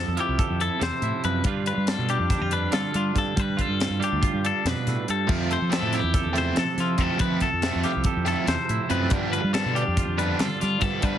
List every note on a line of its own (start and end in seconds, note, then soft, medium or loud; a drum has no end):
0.00 1.23 F2 medium
0.00 0.19 A4 medium
0.00 0.39 A4 medium
0.08 0.17 F2 medium
0.17 1.46 F3 medium
0.17 0.60 E4 medium
0.17 0.62 G4 medium
0.17 closed hi-hat medium
0.28 0.37 C2 medium
0.39 0.80 A4 medium
0.39 kick loud
0.39 closed hi-hat medium
0.50 0.68 F2 medium
0.60 1.02 E4 medium
0.60 0.82 A4 medium
0.60 closed hi-hat medium
0.80 0.90 E2 loud
0.80 1.45 C3 medium
0.80 1.46 A4 medium
0.80 1.24 C5 medium
0.80 snare loud
0.80 closed hi-hat loud
1.02 1.11 A2 loud
1.02 1.43 E4 medium
1.02 closed hi-hat medium
1.24 1.44 F2 medium
1.24 1.42 F#2 medium
1.24 1.46 B4 medium
1.24 closed hi-hat medium
1.44 1.71 G2 loud
1.44 3.14 G2 medium
1.44 2.09 G3 medium
1.44 2.10 D4 medium
1.44 1.68 F4 medium
1.44 3.36 B4 medium
1.44 kick loud
1.44 closed hi-hat loud
1.66 2.30 F4 medium
1.66 1.88 B4 medium
1.66 closed hi-hat medium
1.77 1.95 G3 medium
1.87 2.10 A4 medium
1.87 snare medium
1.87 closed hi-hat medium
1.98 2.16 B2 medium
2.09 3.60 G3 medium
2.09 2.29 D4 medium
2.09 2.52 G4 medium
2.09 closed hi-hat medium
2.19 2.37 F2 medium
2.30 2.42 D4 medium
2.30 kick loud
2.30 snare soft
2.30 closed hi-hat loud
2.41 2.68 F2 medium
2.41 2.72 F4 soft
2.51 2.93 D4 medium
2.51 2.74 B4 medium
2.51 closed hi-hat medium
2.72 3.34 D3 medium
2.72 2.82 G3 loud
2.72 3.39 F4 medium
2.72 2.95 A4 medium
2.72 snare loud
2.72 closed hi-hat medium
2.94 3.12 G3 loud
2.94 3.34 D4 medium
2.94 3.17 F4 medium
2.94 closed hi-hat medium
3.15 3.34 G2 medium
3.15 3.25 G2 medium
3.15 3.40 A4 medium
3.15 kick medium
3.15 snare soft
3.15 closed hi-hat medium
3.36 4.64 G2 medium
3.36 3.55 G3 loud
3.36 3.61 B4 medium
3.36 kick loud
3.36 closed hi-hat medium
3.57 4.21 F4 medium
3.57 4.02 A4 medium
3.57 kick medium
3.57 closed hi-hat medium
3.68 3.86 G2 medium
3.80 snare loud
3.80 closed hi-hat medium
3.90 3.99 G2 medium
4.00 5.31 G3 medium
4.00 4.43 D4 medium
4.00 4.45 G4 medium
4.00 closed hi-hat medium
4.12 4.21 D2 medium
4.22 5.50 F4 medium
4.22 kick loud
4.22 closed hi-hat medium
4.33 4.51 G2 medium
4.44 5.27 D4 medium
4.44 4.67 A4 medium
4.44 closed hi-hat medium
4.65 4.74 F2 medium
4.65 4.87 B2 medium
4.65 5.09 B4 medium
4.65 snare loud
4.65 closed hi-hat loud
4.87 5.08 A2 medium
4.87 4.95 B2 medium
4.87 snare soft
4.87 closed hi-hat medium
5.08 5.28 G2 medium
5.08 5.26 G2 medium
5.08 5.30 A4 medium
5.08 closed hi-hat medium
5.27 6.97 F2 medium
5.27 5.55 F2 medium
5.27 5.56 C3 medium
5.27 5.56 F3 medium
5.27 5.56 A3 medium
5.27 5.56 C4 medium
5.27 kick loud
5.27 crash medium
5.51 6.14 A4 medium
5.51 5.73 C5 medium
5.51 closed hi-hat medium
5.62 5.79 F3 medium
5.70 5.98 C3 medium
5.70 5.98 F3 medium
5.70 5.99 A3 medium
5.70 5.99 C4 medium
5.70 5.95 A4 medium
5.70 snare loud
5.70 closed hi-hat medium
5.82 6.00 A2 medium
5.93 6.35 E4 medium
5.93 6.36 G4 medium
5.93 snare soft
5.93 closed hi-hat medium
6.03 6.21 E2 medium
6.14 6.57 A4 medium
6.14 kick loud
6.14 snare soft
6.14 closed hi-hat loud
6.25 6.51 E2 medium
6.33 6.63 C3 medium
6.33 6.62 F3 medium
6.33 6.62 A3 medium
6.33 6.62 C4 medium
6.33 6.77 E4 medium
6.33 snare soft
6.33 closed hi-hat medium
6.38 6.58 C5 medium
6.56 7.21 C3 medium
6.56 6.66 F3 medium
6.56 7.44 A4 medium
6.56 6.79 A4 medium
6.56 snare loud
6.56 closed hi-hat medium
6.77 6.95 F3 medium
6.77 7.18 E4 medium
6.77 7.01 F4 medium
6.77 snare soft
6.77 closed hi-hat medium
6.98 7.20 F2 medium
6.98 7.07 F2 medium
6.98 7.18 C3 medium
6.98 7.17 F3 medium
6.98 7.18 A3 medium
6.98 7.18 C4 loud
6.98 7.21 A4 medium
6.98 kick medium
6.98 closed hi-hat medium
7.19 8.89 F2 medium
7.19 7.47 C3 medium
7.19 7.47 F3 medium
7.19 7.37 F3 loud
7.19 7.48 A3 medium
7.19 7.47 C4 medium
7.19 7.42 B4 medium
7.19 kick loud
7.19 closed hi-hat medium
7.40 7.84 A4 medium
7.40 8.06 A4 medium
7.40 kick medium
7.40 snare soft
7.40 closed hi-hat medium
7.53 7.70 F2 medium
7.62 7.90 C3 medium
7.62 7.90 F3 medium
7.62 7.91 A3 loud
7.62 7.90 C4 medium
7.62 snare loud
7.62 closed hi-hat medium
7.75 7.83 F2 medium
7.83 9.76 F3 medium
7.83 8.26 E4 medium
7.83 8.26 G4 medium
7.83 snare soft
7.83 closed hi-hat medium
7.96 8.04 C2 medium
8.04 8.49 A4 medium
8.04 kick loud
8.04 closed hi-hat medium
8.17 8.34 F2 medium
8.25 8.54 C3 medium
8.25 8.54 F3 medium
8.25 8.53 A3 medium
8.25 8.53 C4 medium
8.25 8.69 E4 medium
8.25 8.48 A4 medium
8.25 snare soft
8.25 closed hi-hat medium
8.47 8.56 E2 loud
8.47 9.12 C3 medium
8.47 9.12 A4 medium
8.47 8.90 C5 medium
8.47 snare loud
8.47 closed hi-hat medium
8.69 8.78 A2 loud
8.69 9.10 E4 medium
8.69 closed hi-hat medium
8.89 9.09 F2 medium
8.89 9.08 F#2 medium
8.89 9.11 C3 medium
8.89 9.11 F3 medium
8.89 9.11 A3 loud
8.89 9.12 C4 medium
8.89 9.12 B4 medium
8.89 closed hi-hat medium
9.09 10.80 G2 medium
9.09 9.38 G2 loud
9.09 9.39 D3 medium
9.09 9.39 F3 medium
9.09 9.40 B3 medium
9.09 9.40 D4 loud
9.09 kick loud
9.09 closed hi-hat loud
9.33 9.97 F4 medium
9.33 9.54 B4 medium
9.33 closed hi-hat medium
9.44 9.61 G3 medium
9.53 9.81 D3 medium
9.53 9.81 F3 medium
9.53 9.82 B3 medium
9.53 9.82 D4 medium
9.53 9.75 A4 medium
9.53 snare loud
9.53 closed hi-hat medium
9.65 9.83 B2 medium
9.75 11.18 G3 medium
9.75 10.17 D4 medium
9.75 10.18 G4 medium
9.75 closed hi-hat medium
9.88 10.04 F2 medium
9.97 10.39 F4 medium
9.97 kick loud
9.97 closed hi-hat loud
10.07 10.33 F2 medium
10.18 10.46 D3 medium
10.18 10.46 F3 medium
10.18 10.46 B3 medium
10.18 10.46 D4 medium
10.18 10.61 D4 medium
10.18 10.41 B4 medium
10.18 closed hi-hat medium
10.39 11.00 D3 medium
10.39 10.49 G3 loud
10.39 11.05 F4 medium
10.39 10.60 A4 medium
10.39 snare loud
10.39 closed hi-hat medium
10.60 10.79 G3 loud
10.60 11.01 D4 medium
10.60 10.81 F4 medium
10.60 snare soft
10.60 closed hi-hat medium
10.81 10.90 G2 medium
10.81 11.00 G2 medium
10.81 11.02 D3 medium
10.81 11.03 F3 medium
10.81 11.03 B3 medium
10.81 11.03 D4 medium
10.81 11.03 A4 medium
10.81 kick medium
10.81 snare soft
10.81 closed hi-hat medium
11.02 11.18 G2 medium
11.02 11.18 D3 medium
11.02 11.18 F3 medium
11.02 11.18 G3 loud
11.02 11.18 B3 medium
11.02 11.18 D4 medium
11.02 11.18 B4 medium
11.02 kick loud
11.02 closed hi-hat loud